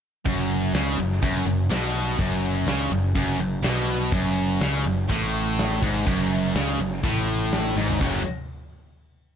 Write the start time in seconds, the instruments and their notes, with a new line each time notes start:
0.25 picked electric bass F#1, distorted electric guitar F#2, kick, open hi-hat
0.73 picked electric bass C#2, distorted electric guitar C#3, snare, open hi-hat
0.98 picked electric bass F#1, distorted electric guitar F#2
1.12 snare
1.23 picked electric bass F#1, distorted electric guitar F#2, kick, open hi-hat
1.45 picked electric bass F#1, distorted electric guitar F#2
1.70 picked electric bass B1, distorted electric guitar B2, snare, open hi-hat
2.18 picked electric bass F#1, distorted electric guitar F#2, kick, open hi-hat
2.66 picked electric bass C#2, distorted electric guitar C#3, snare, open hi-hat
2.90 picked electric bass F#1, distorted electric guitar F#2
3.15 picked electric bass F#1, distorted electric guitar F#2, kick, open hi-hat
3.39 picked electric bass F#1, distorted electric guitar F#2
3.63 picked electric bass B1, distorted electric guitar B2, snare, open hi-hat
3.77 snare
4.12 picked electric bass F#1, distorted electric guitar F#2, kick, open hi-hat
4.61 picked electric bass C#2, distorted electric guitar C#3, snare, open hi-hat
4.86 picked electric bass F#1, distorted electric guitar F#2
5.08 picked electric bass A1, distorted electric guitar A2, kick, open hi-hat
5.58 snare, open hi-hat
5.71 snare
5.82 picked electric bass G#1, distorted electric guitar G#2, kick
6.06 picked electric bass F#1, distorted electric guitar F#2, kick, open hi-hat
6.55 picked electric bass C#2, distorted electric guitar C#3, snare, open hi-hat
6.79 picked electric bass F#1, distorted electric guitar F#2
6.93 snare
7.03 picked electric bass A1, distorted electric guitar A2, kick, open hi-hat
7.52 snare, open hi-hat
7.76 picked electric bass G#1, distorted electric guitar G#2, snare
7.89 floor tom
8.01 picked electric bass F#1, distorted electric guitar F#2 C#3 F#3 A3 C#4, kick, crash